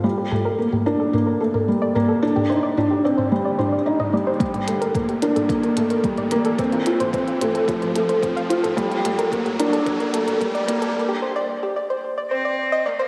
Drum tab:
HH |----------------|----------------|xxxxxxxxxxxxxxxx|xxxxxxxxxxxxxxxx|
T2 |--o--o--o--o--o-|-o--o--o--o--o--|-o--o--o--o--o--|o--o--o--o--o--o|
BD |----------------|----------------|o---o---o---o---|o---o---o---o---|

HH |xxxxxxxxxxxxxxxx|----------------|
T2 |--o--o--o--o--o-|----------------|
BD |o---o---o---o---|----------------|